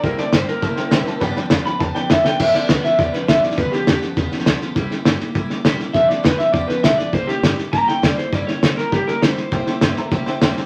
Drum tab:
CC |----------------|----------------|x---------------|----------------|
HH |----p-------p---|----p-------p---|----p-------p---|----p-------p---|
SD |o-o-o-o-o-o-o-o-|o-o-o-o-o-o-o-o-|o-o-o-o-o-o-o-oo|o-o-o-o-o-ooo-o-|
BD |o-------o-------|o-------o-------|o-------o-------|o-------o-------|

CC |----------------|----------------|----------------|----------------|
HH |----p-------p---|----p-------p---|----p-------p---|----p-------p---|
SD |o-o-o-o-o-o-o-o-|o-o-o-o-o-o-o-o-|o-o-o-o-o-o-o-o-|o-o-o-o-o-o-o-o-|
BD |o-------o-------|o-------o-------|o-------o-------|o-------o-------|

CC |----------------|
HH |----p-------p---|
SD |o-o-o-o-o-o-o-o-|
BD |o-------o-------|